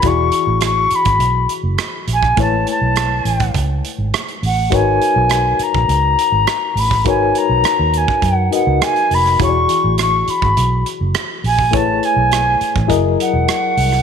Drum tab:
HH |x-x-x-xxx-x-x-x-|x-x-x-xxx-x-xxo-|x-x-x-x-x-x-x-o-|x-x-x-x-x-x-xxo-|
SD |----r-------r--r|----r-------r---|----r-------r--r|----r-------r--r|
BD |o------o-------o|o------oo-------|o------o-------o|o------oo-------|

HH |x-x-x-x-x-x-x-o-|x-x-x-x-x-x-x-o-|
SD |----r-------r---|----r-------r--r|
BD |o------o-------o|o------oo-------|